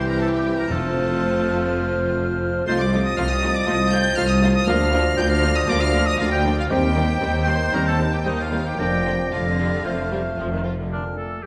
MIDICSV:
0, 0, Header, 1, 12, 480
1, 0, Start_track
1, 0, Key_signature, -2, "major"
1, 0, Tempo, 495868
1, 680, Time_signature, 4, 2, 24, 8
1, 4040, Tempo, 506329
1, 6920, Tempo, 528169
1, 10783, End_track
2, 0, Start_track
2, 0, Title_t, "Flute"
2, 0, Program_c, 0, 73
2, 0, Note_on_c, 0, 91, 57
2, 677, Note_off_c, 0, 91, 0
2, 683, Note_on_c, 0, 89, 71
2, 2559, Note_off_c, 0, 89, 0
2, 2591, Note_on_c, 0, 93, 76
2, 4478, Note_off_c, 0, 93, 0
2, 4517, Note_on_c, 0, 94, 80
2, 6124, Note_off_c, 0, 94, 0
2, 6425, Note_on_c, 0, 91, 81
2, 7825, Note_off_c, 0, 91, 0
2, 7865, Note_on_c, 0, 91, 66
2, 8356, Note_on_c, 0, 94, 67
2, 8370, Note_off_c, 0, 91, 0
2, 8838, Note_off_c, 0, 94, 0
2, 8843, Note_on_c, 0, 94, 69
2, 9319, Note_on_c, 0, 89, 59
2, 9333, Note_off_c, 0, 94, 0
2, 10052, Note_off_c, 0, 89, 0
2, 10298, Note_on_c, 0, 89, 42
2, 10515, Note_off_c, 0, 89, 0
2, 10783, End_track
3, 0, Start_track
3, 0, Title_t, "Violin section"
3, 0, Program_c, 1, 48
3, 94, Note_on_c, 1, 82, 81
3, 196, Note_on_c, 1, 81, 87
3, 205, Note_off_c, 1, 82, 0
3, 318, Note_off_c, 1, 81, 0
3, 330, Note_on_c, 1, 79, 79
3, 560, Note_off_c, 1, 79, 0
3, 562, Note_on_c, 1, 82, 91
3, 681, Note_off_c, 1, 82, 0
3, 695, Note_on_c, 1, 81, 76
3, 1876, Note_off_c, 1, 81, 0
3, 2587, Note_on_c, 1, 84, 96
3, 2703, Note_off_c, 1, 84, 0
3, 2710, Note_on_c, 1, 86, 87
3, 2953, Note_off_c, 1, 86, 0
3, 2965, Note_on_c, 1, 87, 95
3, 3072, Note_on_c, 1, 89, 113
3, 3078, Note_off_c, 1, 87, 0
3, 3194, Note_off_c, 1, 89, 0
3, 3194, Note_on_c, 1, 87, 113
3, 3436, Note_off_c, 1, 87, 0
3, 3436, Note_on_c, 1, 86, 98
3, 3537, Note_on_c, 1, 87, 110
3, 3557, Note_off_c, 1, 86, 0
3, 3781, Note_on_c, 1, 91, 112
3, 3789, Note_off_c, 1, 87, 0
3, 4018, Note_on_c, 1, 89, 120
3, 4032, Note_off_c, 1, 91, 0
3, 4148, Note_off_c, 1, 89, 0
3, 4151, Note_on_c, 1, 87, 105
3, 4390, Note_off_c, 1, 87, 0
3, 4401, Note_on_c, 1, 87, 103
3, 4505, Note_on_c, 1, 89, 102
3, 4517, Note_off_c, 1, 87, 0
3, 4986, Note_off_c, 1, 89, 0
3, 4995, Note_on_c, 1, 91, 113
3, 5112, Note_off_c, 1, 91, 0
3, 5117, Note_on_c, 1, 89, 117
3, 5348, Note_off_c, 1, 89, 0
3, 5357, Note_on_c, 1, 87, 109
3, 5474, Note_off_c, 1, 87, 0
3, 5478, Note_on_c, 1, 86, 123
3, 5595, Note_off_c, 1, 86, 0
3, 5603, Note_on_c, 1, 89, 112
3, 5840, Note_off_c, 1, 89, 0
3, 5841, Note_on_c, 1, 87, 112
3, 5956, Note_off_c, 1, 87, 0
3, 5959, Note_on_c, 1, 77, 115
3, 6075, Note_off_c, 1, 77, 0
3, 6078, Note_on_c, 1, 79, 106
3, 6313, Note_off_c, 1, 79, 0
3, 6337, Note_on_c, 1, 77, 97
3, 6382, Note_off_c, 1, 77, 0
3, 6448, Note_on_c, 1, 79, 106
3, 7146, Note_off_c, 1, 79, 0
3, 7162, Note_on_c, 1, 84, 103
3, 7394, Note_off_c, 1, 84, 0
3, 7402, Note_on_c, 1, 82, 99
3, 7515, Note_off_c, 1, 82, 0
3, 7517, Note_on_c, 1, 81, 92
3, 7747, Note_off_c, 1, 81, 0
3, 7759, Note_on_c, 1, 79, 89
3, 7864, Note_on_c, 1, 75, 90
3, 7874, Note_off_c, 1, 79, 0
3, 7987, Note_off_c, 1, 75, 0
3, 7989, Note_on_c, 1, 77, 81
3, 8234, Note_off_c, 1, 77, 0
3, 8238, Note_on_c, 1, 79, 90
3, 8339, Note_off_c, 1, 79, 0
3, 8350, Note_on_c, 1, 79, 90
3, 8832, Note_off_c, 1, 79, 0
3, 8848, Note_on_c, 1, 77, 73
3, 9811, Note_off_c, 1, 77, 0
3, 10783, End_track
4, 0, Start_track
4, 0, Title_t, "Clarinet"
4, 0, Program_c, 2, 71
4, 0, Note_on_c, 2, 72, 53
4, 680, Note_off_c, 2, 72, 0
4, 686, Note_on_c, 2, 72, 69
4, 2561, Note_off_c, 2, 72, 0
4, 2596, Note_on_c, 2, 75, 74
4, 4349, Note_off_c, 2, 75, 0
4, 4510, Note_on_c, 2, 74, 74
4, 6395, Note_off_c, 2, 74, 0
4, 6443, Note_on_c, 2, 72, 85
4, 7834, Note_off_c, 2, 72, 0
4, 7864, Note_on_c, 2, 72, 65
4, 8348, Note_on_c, 2, 74, 62
4, 8361, Note_off_c, 2, 72, 0
4, 8841, Note_off_c, 2, 74, 0
4, 8858, Note_on_c, 2, 74, 58
4, 9320, Note_on_c, 2, 72, 65
4, 9334, Note_off_c, 2, 74, 0
4, 10052, Note_off_c, 2, 72, 0
4, 10293, Note_on_c, 2, 62, 43
4, 10512, Note_off_c, 2, 62, 0
4, 10519, Note_on_c, 2, 69, 43
4, 10774, Note_off_c, 2, 69, 0
4, 10783, End_track
5, 0, Start_track
5, 0, Title_t, "Oboe"
5, 0, Program_c, 3, 68
5, 86, Note_on_c, 3, 70, 62
5, 201, Note_off_c, 3, 70, 0
5, 208, Note_on_c, 3, 69, 72
5, 260, Note_off_c, 3, 69, 0
5, 332, Note_on_c, 3, 67, 63
5, 557, Note_off_c, 3, 67, 0
5, 563, Note_on_c, 3, 70, 80
5, 690, Note_on_c, 3, 69, 67
5, 705, Note_off_c, 3, 70, 0
5, 1873, Note_off_c, 3, 69, 0
5, 2586, Note_on_c, 3, 72, 94
5, 2642, Note_off_c, 3, 72, 0
5, 2705, Note_on_c, 3, 74, 75
5, 2815, Note_off_c, 3, 74, 0
5, 2950, Note_on_c, 3, 75, 83
5, 3054, Note_off_c, 3, 75, 0
5, 3060, Note_on_c, 3, 77, 89
5, 3118, Note_off_c, 3, 77, 0
5, 3196, Note_on_c, 3, 75, 87
5, 3433, Note_on_c, 3, 74, 82
5, 3447, Note_off_c, 3, 75, 0
5, 3541, Note_on_c, 3, 75, 98
5, 3556, Note_off_c, 3, 74, 0
5, 3788, Note_off_c, 3, 75, 0
5, 3794, Note_on_c, 3, 79, 96
5, 4033, Note_off_c, 3, 79, 0
5, 4043, Note_on_c, 3, 77, 101
5, 4096, Note_off_c, 3, 77, 0
5, 4154, Note_on_c, 3, 75, 83
5, 4263, Note_off_c, 3, 75, 0
5, 4391, Note_on_c, 3, 75, 81
5, 4447, Note_off_c, 3, 75, 0
5, 4517, Note_on_c, 3, 77, 106
5, 4973, Note_off_c, 3, 77, 0
5, 4979, Note_on_c, 3, 79, 98
5, 5095, Note_off_c, 3, 79, 0
5, 5101, Note_on_c, 3, 77, 91
5, 5357, Note_on_c, 3, 75, 91
5, 5371, Note_off_c, 3, 77, 0
5, 5469, Note_on_c, 3, 74, 99
5, 5483, Note_off_c, 3, 75, 0
5, 5584, Note_on_c, 3, 77, 105
5, 5598, Note_off_c, 3, 74, 0
5, 5828, Note_on_c, 3, 75, 89
5, 5842, Note_off_c, 3, 77, 0
5, 5952, Note_off_c, 3, 75, 0
5, 5962, Note_on_c, 3, 65, 80
5, 6063, Note_off_c, 3, 65, 0
5, 6069, Note_on_c, 3, 67, 78
5, 6179, Note_off_c, 3, 67, 0
5, 6314, Note_on_c, 3, 65, 87
5, 6434, Note_on_c, 3, 67, 94
5, 6448, Note_off_c, 3, 65, 0
5, 7164, Note_on_c, 3, 72, 80
5, 7178, Note_off_c, 3, 67, 0
5, 7399, Note_on_c, 3, 70, 92
5, 7412, Note_off_c, 3, 72, 0
5, 7513, Note_off_c, 3, 70, 0
5, 7524, Note_on_c, 3, 69, 87
5, 7628, Note_off_c, 3, 69, 0
5, 7761, Note_on_c, 3, 67, 79
5, 7812, Note_off_c, 3, 67, 0
5, 7876, Note_on_c, 3, 63, 77
5, 7990, Note_off_c, 3, 63, 0
5, 8001, Note_on_c, 3, 65, 67
5, 8232, Note_off_c, 3, 65, 0
5, 8237, Note_on_c, 3, 67, 69
5, 8356, Note_off_c, 3, 67, 0
5, 8363, Note_on_c, 3, 67, 83
5, 8673, Note_off_c, 3, 67, 0
5, 8849, Note_on_c, 3, 65, 57
5, 9775, Note_off_c, 3, 65, 0
5, 10292, Note_on_c, 3, 62, 53
5, 10398, Note_off_c, 3, 62, 0
5, 10516, Note_on_c, 3, 69, 49
5, 10749, Note_on_c, 3, 67, 46
5, 10763, Note_off_c, 3, 69, 0
5, 10783, Note_off_c, 3, 67, 0
5, 10783, End_track
6, 0, Start_track
6, 0, Title_t, "Violin section"
6, 0, Program_c, 4, 48
6, 0, Note_on_c, 4, 60, 66
6, 0, Note_on_c, 4, 67, 70
6, 658, Note_off_c, 4, 60, 0
6, 670, Note_on_c, 4, 60, 69
6, 675, Note_on_c, 4, 65, 65
6, 680, Note_off_c, 4, 67, 0
6, 2553, Note_off_c, 4, 60, 0
6, 2556, Note_off_c, 4, 65, 0
6, 2596, Note_on_c, 4, 65, 67
6, 2598, Note_on_c, 4, 63, 74
6, 2674, Note_off_c, 4, 65, 0
6, 2676, Note_off_c, 4, 63, 0
6, 2835, Note_on_c, 4, 65, 65
6, 2836, Note_on_c, 4, 63, 68
6, 2913, Note_off_c, 4, 65, 0
6, 2914, Note_off_c, 4, 63, 0
6, 3073, Note_on_c, 4, 65, 70
6, 3074, Note_on_c, 4, 63, 72
6, 3151, Note_off_c, 4, 65, 0
6, 3152, Note_off_c, 4, 63, 0
6, 3322, Note_on_c, 4, 65, 65
6, 3323, Note_on_c, 4, 63, 68
6, 3399, Note_off_c, 4, 65, 0
6, 3401, Note_off_c, 4, 63, 0
6, 3552, Note_on_c, 4, 65, 79
6, 3554, Note_on_c, 4, 63, 71
6, 3630, Note_off_c, 4, 65, 0
6, 3632, Note_off_c, 4, 63, 0
6, 3805, Note_on_c, 4, 63, 66
6, 3805, Note_on_c, 4, 65, 60
6, 3882, Note_off_c, 4, 63, 0
6, 3883, Note_off_c, 4, 65, 0
6, 4032, Note_on_c, 4, 63, 69
6, 4036, Note_on_c, 4, 65, 73
6, 4108, Note_off_c, 4, 63, 0
6, 4112, Note_off_c, 4, 65, 0
6, 4277, Note_on_c, 4, 65, 71
6, 4282, Note_on_c, 4, 63, 70
6, 4352, Note_off_c, 4, 65, 0
6, 4358, Note_off_c, 4, 63, 0
6, 4507, Note_on_c, 4, 62, 69
6, 4515, Note_on_c, 4, 65, 79
6, 4583, Note_off_c, 4, 62, 0
6, 4591, Note_off_c, 4, 65, 0
6, 4751, Note_on_c, 4, 65, 66
6, 4755, Note_on_c, 4, 62, 68
6, 4827, Note_off_c, 4, 65, 0
6, 4831, Note_off_c, 4, 62, 0
6, 4994, Note_on_c, 4, 62, 77
6, 5000, Note_on_c, 4, 65, 67
6, 5069, Note_off_c, 4, 62, 0
6, 5076, Note_off_c, 4, 65, 0
6, 5236, Note_on_c, 4, 65, 70
6, 5245, Note_on_c, 4, 62, 68
6, 5312, Note_off_c, 4, 65, 0
6, 5321, Note_off_c, 4, 62, 0
6, 5484, Note_on_c, 4, 62, 81
6, 5490, Note_on_c, 4, 65, 72
6, 5559, Note_off_c, 4, 62, 0
6, 5566, Note_off_c, 4, 65, 0
6, 5728, Note_on_c, 4, 62, 68
6, 5729, Note_on_c, 4, 65, 70
6, 5804, Note_off_c, 4, 62, 0
6, 5804, Note_off_c, 4, 65, 0
6, 5960, Note_on_c, 4, 65, 68
6, 5963, Note_on_c, 4, 62, 61
6, 6036, Note_off_c, 4, 65, 0
6, 6039, Note_off_c, 4, 62, 0
6, 6204, Note_on_c, 4, 65, 69
6, 6206, Note_on_c, 4, 62, 69
6, 6279, Note_off_c, 4, 65, 0
6, 6282, Note_off_c, 4, 62, 0
6, 6434, Note_on_c, 4, 60, 76
6, 6435, Note_off_c, 4, 60, 0
6, 6435, Note_on_c, 4, 60, 83
6, 6511, Note_off_c, 4, 60, 0
6, 6678, Note_on_c, 4, 60, 63
6, 6681, Note_off_c, 4, 60, 0
6, 6681, Note_on_c, 4, 60, 69
6, 6757, Note_off_c, 4, 60, 0
6, 6915, Note_on_c, 4, 60, 73
6, 6917, Note_off_c, 4, 60, 0
6, 6917, Note_on_c, 4, 60, 65
6, 6990, Note_off_c, 4, 60, 0
6, 7154, Note_on_c, 4, 60, 72
6, 7156, Note_off_c, 4, 60, 0
6, 7156, Note_on_c, 4, 60, 66
6, 7229, Note_off_c, 4, 60, 0
6, 7385, Note_on_c, 4, 60, 65
6, 7391, Note_off_c, 4, 60, 0
6, 7391, Note_on_c, 4, 60, 72
6, 7463, Note_off_c, 4, 60, 0
6, 7625, Note_on_c, 4, 60, 57
6, 7628, Note_off_c, 4, 60, 0
6, 7628, Note_on_c, 4, 60, 54
6, 7701, Note_off_c, 4, 60, 0
6, 7865, Note_on_c, 4, 60, 62
6, 7938, Note_off_c, 4, 60, 0
6, 8098, Note_on_c, 4, 60, 57
6, 8100, Note_off_c, 4, 60, 0
6, 8100, Note_on_c, 4, 60, 66
6, 8172, Note_off_c, 4, 60, 0
6, 8345, Note_on_c, 4, 65, 58
6, 8350, Note_on_c, 4, 62, 62
6, 8417, Note_off_c, 4, 65, 0
6, 8422, Note_off_c, 4, 62, 0
6, 8588, Note_on_c, 4, 65, 52
6, 8589, Note_on_c, 4, 62, 61
6, 8661, Note_off_c, 4, 65, 0
6, 8662, Note_off_c, 4, 62, 0
6, 8832, Note_on_c, 4, 65, 62
6, 8839, Note_on_c, 4, 62, 62
6, 8905, Note_off_c, 4, 65, 0
6, 8911, Note_off_c, 4, 62, 0
6, 9078, Note_on_c, 4, 62, 56
6, 9083, Note_on_c, 4, 65, 60
6, 9151, Note_off_c, 4, 62, 0
6, 9156, Note_off_c, 4, 65, 0
6, 9324, Note_on_c, 4, 65, 61
6, 9327, Note_on_c, 4, 60, 60
6, 9396, Note_off_c, 4, 65, 0
6, 9399, Note_off_c, 4, 60, 0
6, 9561, Note_on_c, 4, 65, 53
6, 9562, Note_on_c, 4, 60, 58
6, 9633, Note_off_c, 4, 65, 0
6, 9635, Note_off_c, 4, 60, 0
6, 9794, Note_on_c, 4, 65, 54
6, 9798, Note_on_c, 4, 60, 55
6, 9866, Note_off_c, 4, 65, 0
6, 9871, Note_off_c, 4, 60, 0
6, 10040, Note_on_c, 4, 60, 54
6, 10041, Note_on_c, 4, 65, 61
6, 10113, Note_off_c, 4, 60, 0
6, 10114, Note_off_c, 4, 65, 0
6, 10783, End_track
7, 0, Start_track
7, 0, Title_t, "French horn section"
7, 0, Program_c, 5, 60
7, 0, Note_on_c, 5, 55, 62
7, 0, Note_on_c, 5, 64, 70
7, 639, Note_off_c, 5, 55, 0
7, 640, Note_off_c, 5, 64, 0
7, 681, Note_on_c, 5, 65, 87
7, 687, Note_on_c, 5, 57, 72
7, 2558, Note_off_c, 5, 57, 0
7, 2558, Note_off_c, 5, 65, 0
7, 2570, Note_on_c, 5, 57, 85
7, 2573, Note_on_c, 5, 65, 76
7, 2746, Note_off_c, 5, 57, 0
7, 2748, Note_off_c, 5, 65, 0
7, 3548, Note_on_c, 5, 57, 67
7, 3557, Note_on_c, 5, 65, 79
7, 3720, Note_off_c, 5, 57, 0
7, 3726, Note_off_c, 5, 65, 0
7, 4509, Note_on_c, 5, 65, 85
7, 4513, Note_on_c, 5, 58, 82
7, 4678, Note_off_c, 5, 65, 0
7, 4681, Note_off_c, 5, 58, 0
7, 5475, Note_on_c, 5, 58, 69
7, 5477, Note_on_c, 5, 65, 81
7, 5642, Note_off_c, 5, 58, 0
7, 5644, Note_off_c, 5, 65, 0
7, 6444, Note_on_c, 5, 55, 90
7, 6445, Note_on_c, 5, 60, 83
7, 6610, Note_off_c, 5, 55, 0
7, 6611, Note_off_c, 5, 60, 0
7, 7389, Note_on_c, 5, 60, 72
7, 7391, Note_on_c, 5, 55, 72
7, 7556, Note_off_c, 5, 55, 0
7, 7556, Note_off_c, 5, 60, 0
7, 8361, Note_on_c, 5, 58, 75
7, 8361, Note_on_c, 5, 62, 71
7, 8531, Note_off_c, 5, 58, 0
7, 8531, Note_off_c, 5, 62, 0
7, 9326, Note_on_c, 5, 57, 56
7, 9329, Note_on_c, 5, 60, 57
7, 9494, Note_off_c, 5, 57, 0
7, 9496, Note_off_c, 5, 60, 0
7, 10291, Note_on_c, 5, 50, 47
7, 10511, Note_off_c, 5, 50, 0
7, 10517, Note_on_c, 5, 57, 46
7, 10752, Note_on_c, 5, 55, 37
7, 10757, Note_off_c, 5, 57, 0
7, 10783, Note_off_c, 5, 55, 0
7, 10783, End_track
8, 0, Start_track
8, 0, Title_t, "Bassoon"
8, 0, Program_c, 6, 70
8, 0, Note_on_c, 6, 52, 71
8, 682, Note_off_c, 6, 52, 0
8, 688, Note_on_c, 6, 53, 76
8, 2562, Note_off_c, 6, 53, 0
8, 2595, Note_on_c, 6, 53, 77
8, 6279, Note_off_c, 6, 53, 0
8, 6440, Note_on_c, 6, 51, 89
8, 7833, Note_off_c, 6, 51, 0
8, 7861, Note_on_c, 6, 51, 72
8, 8362, Note_on_c, 6, 53, 69
8, 8376, Note_off_c, 6, 51, 0
8, 8846, Note_off_c, 6, 53, 0
8, 8851, Note_on_c, 6, 53, 55
8, 8958, Note_off_c, 6, 53, 0
8, 9089, Note_on_c, 6, 55, 54
8, 9323, Note_off_c, 6, 55, 0
8, 9327, Note_on_c, 6, 57, 67
8, 10041, Note_off_c, 6, 57, 0
8, 10297, Note_on_c, 6, 46, 48
8, 10686, Note_off_c, 6, 46, 0
8, 10783, End_track
9, 0, Start_track
9, 0, Title_t, "Viola section"
9, 0, Program_c, 7, 48
9, 0, Note_on_c, 7, 52, 66
9, 0, Note_on_c, 7, 55, 64
9, 682, Note_on_c, 7, 57, 73
9, 683, Note_off_c, 7, 55, 0
9, 684, Note_off_c, 7, 52, 0
9, 685, Note_on_c, 7, 53, 72
9, 2559, Note_off_c, 7, 57, 0
9, 2560, Note_off_c, 7, 53, 0
9, 2595, Note_on_c, 7, 53, 69
9, 2599, Note_on_c, 7, 57, 68
9, 2672, Note_off_c, 7, 53, 0
9, 2677, Note_off_c, 7, 57, 0
9, 2834, Note_on_c, 7, 57, 66
9, 2836, Note_on_c, 7, 53, 59
9, 2911, Note_off_c, 7, 57, 0
9, 2914, Note_off_c, 7, 53, 0
9, 3070, Note_on_c, 7, 53, 75
9, 3070, Note_on_c, 7, 57, 71
9, 3147, Note_off_c, 7, 53, 0
9, 3147, Note_off_c, 7, 57, 0
9, 3310, Note_on_c, 7, 57, 62
9, 3317, Note_on_c, 7, 53, 62
9, 3388, Note_off_c, 7, 57, 0
9, 3395, Note_off_c, 7, 53, 0
9, 3559, Note_on_c, 7, 53, 74
9, 3559, Note_on_c, 7, 57, 78
9, 3636, Note_off_c, 7, 53, 0
9, 3637, Note_off_c, 7, 57, 0
9, 3792, Note_on_c, 7, 57, 69
9, 3796, Note_on_c, 7, 53, 61
9, 3870, Note_off_c, 7, 57, 0
9, 3873, Note_off_c, 7, 53, 0
9, 4036, Note_on_c, 7, 53, 65
9, 4039, Note_on_c, 7, 57, 68
9, 4112, Note_off_c, 7, 53, 0
9, 4115, Note_off_c, 7, 57, 0
9, 4264, Note_on_c, 7, 57, 67
9, 4266, Note_on_c, 7, 53, 61
9, 4340, Note_off_c, 7, 57, 0
9, 4342, Note_off_c, 7, 53, 0
9, 4510, Note_on_c, 7, 53, 75
9, 4515, Note_on_c, 7, 58, 69
9, 4586, Note_off_c, 7, 53, 0
9, 4591, Note_off_c, 7, 58, 0
9, 4747, Note_on_c, 7, 58, 76
9, 4751, Note_on_c, 7, 53, 69
9, 4823, Note_off_c, 7, 58, 0
9, 4827, Note_off_c, 7, 53, 0
9, 4985, Note_on_c, 7, 53, 69
9, 4991, Note_on_c, 7, 58, 77
9, 5061, Note_off_c, 7, 53, 0
9, 5067, Note_off_c, 7, 58, 0
9, 5217, Note_on_c, 7, 58, 65
9, 5219, Note_on_c, 7, 53, 68
9, 5293, Note_off_c, 7, 58, 0
9, 5295, Note_off_c, 7, 53, 0
9, 5457, Note_on_c, 7, 58, 74
9, 5459, Note_on_c, 7, 53, 81
9, 5533, Note_off_c, 7, 58, 0
9, 5535, Note_off_c, 7, 53, 0
9, 5703, Note_on_c, 7, 53, 64
9, 5706, Note_on_c, 7, 58, 70
9, 5779, Note_off_c, 7, 53, 0
9, 5782, Note_off_c, 7, 58, 0
9, 5945, Note_on_c, 7, 58, 67
9, 5946, Note_on_c, 7, 53, 65
9, 6021, Note_off_c, 7, 58, 0
9, 6022, Note_off_c, 7, 53, 0
9, 6191, Note_on_c, 7, 53, 67
9, 6193, Note_on_c, 7, 58, 63
9, 6267, Note_off_c, 7, 53, 0
9, 6268, Note_off_c, 7, 58, 0
9, 6439, Note_on_c, 7, 55, 71
9, 6441, Note_on_c, 7, 51, 73
9, 6515, Note_off_c, 7, 55, 0
9, 6517, Note_off_c, 7, 51, 0
9, 6680, Note_on_c, 7, 55, 64
9, 6681, Note_on_c, 7, 51, 69
9, 6756, Note_off_c, 7, 51, 0
9, 6756, Note_off_c, 7, 55, 0
9, 6921, Note_on_c, 7, 55, 70
9, 6922, Note_on_c, 7, 51, 66
9, 6993, Note_off_c, 7, 55, 0
9, 6995, Note_off_c, 7, 51, 0
9, 7149, Note_on_c, 7, 55, 58
9, 7153, Note_on_c, 7, 51, 61
9, 7222, Note_off_c, 7, 55, 0
9, 7226, Note_off_c, 7, 51, 0
9, 7397, Note_on_c, 7, 51, 77
9, 7398, Note_on_c, 7, 55, 71
9, 7470, Note_off_c, 7, 51, 0
9, 7470, Note_off_c, 7, 55, 0
9, 7630, Note_on_c, 7, 55, 61
9, 7631, Note_on_c, 7, 51, 54
9, 7702, Note_off_c, 7, 55, 0
9, 7703, Note_off_c, 7, 51, 0
9, 7869, Note_on_c, 7, 51, 62
9, 7869, Note_on_c, 7, 55, 64
9, 7942, Note_off_c, 7, 51, 0
9, 7942, Note_off_c, 7, 55, 0
9, 8109, Note_on_c, 7, 51, 60
9, 8112, Note_on_c, 7, 55, 61
9, 8182, Note_off_c, 7, 51, 0
9, 8185, Note_off_c, 7, 55, 0
9, 8358, Note_on_c, 7, 58, 64
9, 8361, Note_on_c, 7, 50, 65
9, 8430, Note_off_c, 7, 58, 0
9, 8433, Note_off_c, 7, 50, 0
9, 8595, Note_on_c, 7, 58, 53
9, 8599, Note_on_c, 7, 50, 56
9, 8667, Note_off_c, 7, 58, 0
9, 8672, Note_off_c, 7, 50, 0
9, 8833, Note_on_c, 7, 50, 83
9, 9524, Note_off_c, 7, 50, 0
9, 9564, Note_on_c, 7, 55, 68
9, 9637, Note_off_c, 7, 55, 0
9, 9810, Note_on_c, 7, 53, 68
9, 9930, Note_off_c, 7, 53, 0
9, 9931, Note_on_c, 7, 51, 75
9, 10004, Note_off_c, 7, 51, 0
9, 10179, Note_on_c, 7, 50, 59
9, 10294, Note_off_c, 7, 50, 0
9, 10783, End_track
10, 0, Start_track
10, 0, Title_t, "Timpani"
10, 0, Program_c, 8, 47
10, 681, Note_on_c, 8, 41, 74
10, 1355, Note_off_c, 8, 41, 0
10, 10783, End_track
11, 0, Start_track
11, 0, Title_t, "Cello section"
11, 0, Program_c, 10, 48
11, 0, Note_on_c, 10, 36, 67
11, 672, Note_on_c, 10, 41, 70
11, 677, Note_off_c, 10, 36, 0
11, 2554, Note_off_c, 10, 41, 0
11, 2590, Note_on_c, 10, 36, 81
11, 3016, Note_off_c, 10, 36, 0
11, 3069, Note_on_c, 10, 36, 92
11, 3497, Note_off_c, 10, 36, 0
11, 3553, Note_on_c, 10, 36, 81
11, 3981, Note_off_c, 10, 36, 0
11, 4031, Note_on_c, 10, 36, 80
11, 4457, Note_off_c, 10, 36, 0
11, 4510, Note_on_c, 10, 38, 89
11, 4932, Note_off_c, 10, 38, 0
11, 4988, Note_on_c, 10, 38, 91
11, 5411, Note_off_c, 10, 38, 0
11, 5467, Note_on_c, 10, 38, 89
11, 5897, Note_off_c, 10, 38, 0
11, 5948, Note_on_c, 10, 38, 75
11, 6377, Note_off_c, 10, 38, 0
11, 6427, Note_on_c, 10, 39, 86
11, 6859, Note_off_c, 10, 39, 0
11, 6914, Note_on_c, 10, 39, 84
11, 7331, Note_off_c, 10, 39, 0
11, 7384, Note_on_c, 10, 39, 82
11, 7808, Note_off_c, 10, 39, 0
11, 7870, Note_on_c, 10, 39, 77
11, 8300, Note_off_c, 10, 39, 0
11, 8356, Note_on_c, 10, 41, 73
11, 8788, Note_off_c, 10, 41, 0
11, 8846, Note_on_c, 10, 41, 83
11, 9269, Note_off_c, 10, 41, 0
11, 9329, Note_on_c, 10, 41, 68
11, 9755, Note_off_c, 10, 41, 0
11, 9809, Note_on_c, 10, 41, 62
11, 10238, Note_off_c, 10, 41, 0
11, 10783, End_track
12, 0, Start_track
12, 0, Title_t, "Double bass section"
12, 0, Program_c, 11, 48
12, 0, Note_on_c, 11, 36, 63
12, 680, Note_off_c, 11, 36, 0
12, 684, Note_on_c, 11, 29, 73
12, 2560, Note_off_c, 11, 29, 0
12, 2597, Note_on_c, 11, 36, 91
12, 3019, Note_off_c, 11, 36, 0
12, 3077, Note_on_c, 11, 36, 82
12, 3501, Note_off_c, 11, 36, 0
12, 3558, Note_on_c, 11, 36, 82
12, 3984, Note_off_c, 11, 36, 0
12, 4056, Note_on_c, 11, 36, 87
12, 4470, Note_off_c, 11, 36, 0
12, 4527, Note_on_c, 11, 38, 93
12, 4941, Note_off_c, 11, 38, 0
12, 5001, Note_on_c, 11, 38, 93
12, 5417, Note_off_c, 11, 38, 0
12, 5475, Note_on_c, 11, 38, 100
12, 5900, Note_off_c, 11, 38, 0
12, 5957, Note_on_c, 11, 38, 92
12, 6382, Note_off_c, 11, 38, 0
12, 6447, Note_on_c, 11, 39, 83
12, 6869, Note_off_c, 11, 39, 0
12, 6922, Note_on_c, 11, 39, 73
12, 7335, Note_off_c, 11, 39, 0
12, 7401, Note_on_c, 11, 39, 79
12, 7816, Note_off_c, 11, 39, 0
12, 7873, Note_on_c, 11, 39, 78
12, 8301, Note_off_c, 11, 39, 0
12, 8361, Note_on_c, 11, 29, 83
12, 8790, Note_off_c, 11, 29, 0
12, 8849, Note_on_c, 11, 29, 73
12, 9270, Note_off_c, 11, 29, 0
12, 9323, Note_on_c, 11, 29, 70
12, 9751, Note_off_c, 11, 29, 0
12, 9811, Note_on_c, 11, 29, 78
12, 10239, Note_off_c, 11, 29, 0
12, 10783, End_track
0, 0, End_of_file